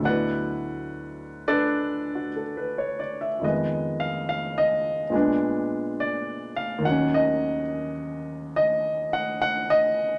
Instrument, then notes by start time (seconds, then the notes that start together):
grand piano
Already playing: D2
0.01 B2 F#3 F#4 B4 D5 F#5
0.09 E4
1.48 D4 A4 B4 D5
2.15 F#4
2.36 A4
2.57 B4
2.78 C#5
2.99 D5
3.21 E5
3.40 F2 D#3 G#3
3.44 B3 D#5
4.00 F5
4.29 F5
4.58 D#5
5.10 A#2 G#3 B3
5.15 D4
6.00 D5
6.56 F5
6.78 D#2 D#3
6.85 F#3 F#5
6.89 C#4
7.14 D#5
8.56 D#5
9.13 F#5
9.42 F#5
9.70 D#5